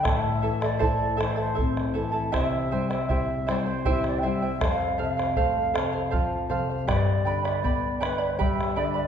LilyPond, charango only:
\new Staff \with { instrumentName = "Charango" } { \time 3/4 \key a \minor \tempo 4 = 79 <e' a' e'' a''>8 <e' a' e'' a''>16 <e' a' a''>16 <e' a' c'' e'' a''>8 <e' a' e'' a''>16 <e' a' a''>16 <e' a' e'' a''>8 <e' a' e'' a''>16 <e' a' a''>16 | <e' g' c'' e'' g''>8 <e' c'' e'' g''>16 <e' c'' g''>16 <e' c'' e'' g''>8 <e' c'' e'' g''>16 <e' c'' g''>16 <e' g' c'' e'' g''>8 <e' c'' e'' g''>16 <e' c'' g''>16 | <a' c'' f''>8 <a' c'' f''>16 <c'' f''>16 <a' c'' f''>8 <a' c'' f''>16 <c'' f''>16 <a' c'' f''>8 <a' c'' f''>16 <c'' f''>16 | <g' b' d'' g'' b''>8 <b' d'' g'' b''>16 <b' d'' b''>16 <b' d'' g'' b''>8 <b' d'' g'' b''>16 <b' d'' b''>16 <g' b' d'' g'' b''>8 <b' d'' g'' b''>16 <b' d'' b''>16 | }